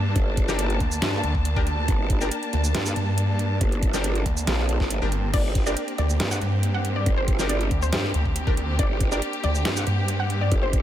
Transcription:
0.00 0.14 G2 medium
0.00 10.82 A#3 medium
0.00 4.43 D4 medium
0.00 5.32 A5 medium
0.16 0.79 G1 loud
0.16 kick loud
0.16 closed hi-hat medium
0.37 kick loud
0.37 closed hi-hat medium
0.48 1.32 D4 medium
0.48 1.32 G4 medium
0.48 1.32 A#4 loud
0.48 snare soft
0.48 shaker medium
0.59 closed hi-hat medium
0.70 closed hi-hat soft
0.80 1.00 D2 loud
0.80 kick medium
0.80 closed hi-hat medium
0.92 shaker medium
1.02 1.22 G2 loud
1.02 snare loud
1.02 closed hi-hat medium
1.24 1.65 D2 loud
1.24 closed hi-hat medium
1.35 kick medium
1.45 closed hi-hat medium
1.56 1.63 D4 medium
1.56 1.63 G4 medium
1.56 1.63 A#4 medium
1.56 kick loud
1.67 1.87 D2 loud
1.67 closed hi-hat medium
1.88 2.30 G1 loud
1.88 kick loud
1.88 closed hi-hat medium
2.10 kick loud
2.10 closed hi-hat medium
2.21 3.91 D4 medium
2.21 3.91 G4 medium
2.21 3.91 A#4 loud
2.21 shaker medium
2.31 closed hi-hat medium
2.43 closed hi-hat soft
2.53 2.73 D2 loud
2.53 closed hi-hat medium
2.64 shaker medium
2.75 2.95 G2 loud
2.75 snare loud
2.75 closed hi-hat medium
2.86 shaker medium
2.96 3.59 G2 loud
2.96 closed hi-hat medium
3.18 closed hi-hat medium
3.39 closed hi-hat medium
3.61 4.24 G1 loud
3.61 kick loud
3.61 closed hi-hat medium
3.72 closed hi-hat soft
3.83 kick loud
3.83 closed hi-hat medium
3.94 4.77 D4 medium
3.94 4.77 G4 medium
3.94 4.77 A#4 loud
3.94 snare soft
3.94 shaker medium
4.04 closed hi-hat medium
4.15 closed hi-hat soft
4.26 4.46 D2 loud
4.26 kick medium
4.26 closed hi-hat medium
4.37 shaker medium
4.47 4.78 A#1 loud
4.47 10.82 C4 medium
4.47 snare loud
4.47 closed hi-hat medium
4.69 closed hi-hat medium
4.80 5.00 G1 loud
4.80 kick medium
4.80 snare soft
4.90 closed hi-hat medium
5.02 5.32 G1 loud
5.02 5.09 D4 medium
5.02 5.09 G4 medium
5.02 5.09 A#4 medium
5.12 closed hi-hat medium
5.34 5.75 G1 loud
5.34 10.82 G4 medium
5.34 5.53 D5 loud
5.34 kick loud
5.34 closed hi-hat medium
5.34 crash medium
5.55 kick loud
5.55 closed hi-hat medium
5.66 7.36 D4 medium
5.66 7.36 G4 medium
5.66 7.36 A#4 loud
5.66 5.86 D5 medium
5.66 shaker medium
5.77 closed hi-hat medium
5.88 closed hi-hat soft
5.98 6.18 D2 loud
5.98 6.18 D5 medium
5.98 closed hi-hat medium
6.10 shaker medium
6.20 6.40 G2 loud
6.20 snare loud
6.20 closed hi-hat medium
6.31 6.57 F#5 medium
6.31 shaker medium
6.42 7.05 G2 loud
6.42 closed hi-hat medium
6.63 closed hi-hat medium
6.74 6.87 F#5 medium
6.85 closed hi-hat medium
6.96 7.09 D5 medium
7.06 7.69 G1 loud
7.06 kick loud
7.06 closed hi-hat medium
7.17 7.37 C5 loud
7.28 kick loud
7.28 closed hi-hat medium
7.39 8.23 D4 medium
7.39 8.23 G4 medium
7.39 8.23 A#4 loud
7.39 snare soft
7.39 shaker medium
7.49 7.69 D5 medium
7.49 closed hi-hat medium
7.61 closed hi-hat soft
7.71 7.91 D2 loud
7.71 kick medium
7.71 closed hi-hat medium
7.82 8.71 C5 medium
7.82 shaker medium
7.93 8.12 G2 loud
7.93 snare loud
7.93 closed hi-hat medium
8.14 8.56 D2 loud
8.14 closed hi-hat medium
8.25 kick medium
8.36 closed hi-hat medium
8.47 8.54 D4 medium
8.47 8.54 G4 medium
8.47 8.54 A#4 medium
8.47 kick loud
8.57 8.77 D2 loud
8.57 closed hi-hat medium
8.79 9.20 G1 loud
8.79 8.99 D5 loud
8.79 kick loud
8.79 closed hi-hat medium
9.01 kick loud
9.01 closed hi-hat medium
9.12 10.82 D4 medium
9.12 10.82 G4 medium
9.12 10.82 A#4 loud
9.12 9.31 D5 loud
9.12 shaker medium
9.22 closed hi-hat medium
9.33 closed hi-hat soft
9.44 9.64 D2 loud
9.44 9.63 D5 loud
9.44 closed hi-hat medium
9.55 shaker medium
9.65 9.85 G2 loud
9.65 snare loud
9.65 closed hi-hat medium
9.76 10.03 F#5 loud
9.76 shaker medium
9.87 10.50 G2 loud
9.87 closed hi-hat medium
10.08 closed hi-hat medium
10.20 10.32 F#5 medium
10.30 closed hi-hat medium
10.41 10.54 D5 medium
10.52 10.82 G1 loud
10.52 kick loud
10.52 closed hi-hat medium
10.63 10.82 C5 medium
10.73 kick loud
10.73 closed hi-hat medium

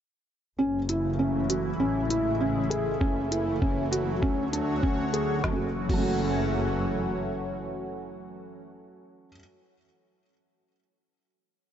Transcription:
0.58 1.77 F#1 medium
0.58 1.78 C#3 medium
0.58 2.99 E3 medium
0.58 1.79 F#3 medium
0.58 5.39 A3 medium
0.58 0.79 C#4 medium
0.58 4.18 E4 medium
0.89 1.09 E4 medium
0.89 closed hi-hat medium
1.19 1.39 C#4 medium
1.49 1.69 F#4 medium
1.49 closed hi-hat medium
1.80 2.98 A1 medium
1.80 4.20 C#3 medium
1.80 3.00 G#3 medium
1.80 2.00 C#4 medium
2.10 2.30 E4 medium
2.10 closed hi-hat medium
2.40 2.60 C#4 medium
2.70 2.90 G#4 medium
2.70 closed hi-hat medium
3.01 4.19 F#1 medium
3.01 4.21 E3 medium
3.01 5.41 F#3 medium
3.01 3.21 C#4 medium
3.01 kick loud
3.31 3.51 E4 medium
3.31 closed hi-hat medium
3.62 3.82 C#4 medium
3.62 kick loud
3.92 4.12 F#4 medium
3.92 closed hi-hat medium
4.22 5.41 D2 medium
4.22 5.43 D3 medium
4.22 4.42 C#4 medium
4.22 5.42 F#4 medium
4.22 5.43 C#5 medium
4.22 kick loud
4.53 4.73 D4 medium
4.53 closed hi-hat medium
4.83 5.03 C#4 medium
4.83 kick loud
5.13 5.33 G#4 medium
5.13 closed hi-hat medium
5.43 5.61 F#1 medium
5.43 8.62 E3 medium
5.43 8.62 F#3 medium
5.43 5.61 F#3 medium
5.43 8.62 A3 medium
5.43 8.62 C#4 medium
5.43 8.62 F#4 medium
5.43 kick loud
5.43 snare medium
5.48 5.63 A3 medium
5.48 5.65 C#4 medium
5.56 5.67 F#4 medium
5.89 7.22 F#1 loud
5.89 9.29 F#3 medium
5.89 9.32 A3 medium
5.89 kick loud
5.89 crash medium
5.97 9.36 C#4 medium
6.01 9.38 F#4 medium

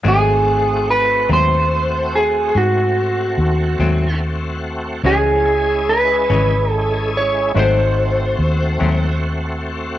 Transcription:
0.04 1.26 G#1 medium
0.04 0.30 G#2 medium
0.04 0.30 F#3 medium
0.04 0.30 A3 medium
0.04 5.02 A3 soft
0.04 5.03 A3 medium
0.04 0.30 C4 medium
0.04 5.02 C4 soft
0.04 5.02 D#4 soft
0.04 5.02 F#4 soft
0.08 0.90 G#4 medium
0.91 1.33 B4 medium
1.29 2.51 D#2 medium
1.29 1.55 G#2 soft
1.29 1.55 F#3 soft
1.29 1.55 A3 medium
1.29 1.55 C4 soft
1.29 2.18 C5 medium
2.15 2.58 G#4 medium
2.55 3.35 G#2 medium
2.55 4.19 F#4 medium
3.38 3.77 D#2 medium
3.79 5.01 D#2 medium
3.79 4.06 G#2 soft
3.79 4.06 F#3 medium
3.79 4.06 A3 medium
3.79 4.05 C4 medium
5.03 6.26 C#2 medium
5.03 5.30 C#3 medium
5.03 5.31 E3 medium
5.03 5.47 F3 medium
5.03 5.31 G#3 medium
5.03 5.47 A3 soft
5.03 5.44 C#4 soft
5.03 7.51 C#4 soft
5.03 5.31 C#4 medium
5.03 7.51 E4 soft
5.03 5.45 G#4 soft
5.03 7.51 G#4 soft
5.03 5.92 G#4 medium
5.03 7.51 C#5 soft
5.45 7.53 G#3 medium
5.45 7.53 C#4 soft
5.45 7.52 E4 soft
5.45 7.53 G#4 medium
5.89 6.71 B4 medium
6.30 7.51 G#1 medium
6.30 6.56 C#3 soft
6.30 6.56 E3 soft
6.30 6.55 G#3 medium
6.30 6.55 C#4 medium
6.71 7.10 A4 medium
7.17 7.58 C#5 medium
7.54 8.35 G#1 medium
7.54 7.80 G#2 medium
7.54 7.80 F#3 medium
7.54 9.98 A3 medium
7.54 7.81 A3 medium
7.54 9.98 C4 medium
7.54 7.81 C4 medium
7.54 9.98 D#4 medium
7.54 9.98 F#4 medium
7.54 9.98 F#4 soft
7.54 9.98 A4 soft
7.54 9.98 C5 soft
7.59 9.20 C5 medium
8.39 8.77 D#2 medium
8.80 9.98 D#2 medium
8.80 9.06 G#2 soft
8.80 9.05 F#3 medium
8.80 9.05 A3 medium
8.80 9.05 C4 medium

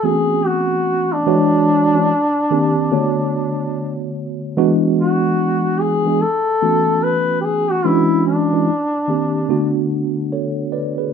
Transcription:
0.03 1.18 E3 medium
0.03 1.18 A3 medium
0.03 1.18 B3 medium
0.03 0.13 C4 medium
0.03 1.19 F#4 medium
0.03 0.47 G#4 loud
0.11 1.22 C#4 medium
0.46 1.14 F#4 loud
1.13 4.16 D4 loud
1.27 1.86 E3 medium
1.27 1.86 G#3 loud
1.27 1.87 D4 loud
1.27 1.87 F#4 loud
1.27 1.87 C#5 medium
1.94 2.10 E3 medium
1.94 2.10 G#3 medium
1.94 2.10 C#4 medium
1.94 2.10 D4 medium
1.94 2.11 F#4 medium
2.51 2.92 D#3 loud
2.51 2.92 A#3 medium
2.51 2.93 C4 medium
2.51 2.93 D4 medium
2.51 2.93 G4 loud
2.91 4.44 D3 medium
2.91 4.44 A3 medium
2.91 4.44 B3 medium
2.91 4.44 F#4 medium
2.91 4.44 C#5 medium
4.57 5.87 E3 loud
4.57 5.87 G#3 loud
4.57 5.88 B3 loud
4.57 5.88 D4 loud
4.57 5.88 F#4 loud
4.98 5.82 F#4 medium
5.80 6.23 G#4 loud
6.05 6.21 E3 medium
6.05 6.21 G#3 medium
6.05 6.21 B3 medium
6.05 6.22 D4 medium
6.05 6.22 G#4 medium
6.21 7.05 A4 loud
6.62 7.76 E3 medium
6.62 7.76 A3 medium
6.62 7.76 B3 medium
6.62 7.76 C#4 medium
6.62 7.77 F#4 medium
7.03 7.41 B4 loud
7.41 7.47 G4 medium
7.41 7.72 G#4 loud
7.70 7.88 F#4 loud
7.85 8.44 E3 loud
7.85 8.44 G#3 medium
7.85 8.45 C#4 medium
7.85 8.45 D4 medium
7.85 8.26 E4 loud
7.85 8.45 F#4 loud
8.27 9.87 D4 medium
8.52 8.68 E3 medium
8.52 8.68 G#3 medium
8.52 8.68 C#4 medium
8.52 8.68 D4 medium
8.52 8.69 E4 medium
9.08 9.49 D#3 medium
9.08 9.50 A#3 medium
9.08 9.50 C4 medium
9.08 9.49 D4 medium
9.08 9.50 G4 medium
9.49 11.01 D3 medium
9.49 11.01 A3 medium
9.49 11.02 B3 medium
9.49 11.02 D4 medium
9.49 11.02 F#4 loud
10.32 10.71 A4 medium
10.32 10.71 C#5 medium
10.72 10.97 B4 medium
10.72 10.97 D5 medium
10.98 11.13 G#4 medium
10.98 11.13 B4 medium

